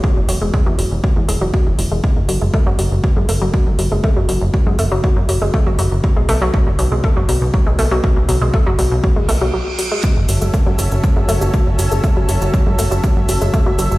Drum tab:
HH |--o---o---o---o-|--o---o---o---o-|--o---o---o---o-|--o---o---o---o-|
SH |----------------|----------------|----------------|----------------|
BD |o---o---o---o---|o---o---o---o---|o---o---o---o---|o---o---o---o---|

HH |--o---o---o---o-|--o---o---o---o-|--o---o---o---o-|
SH |----------------|x-xxx-xxx-xxx-xx|x-xxx-xxx-xxx-xx|
BD |o---o---o-------|o---o---o---o---|o---o---o---o---|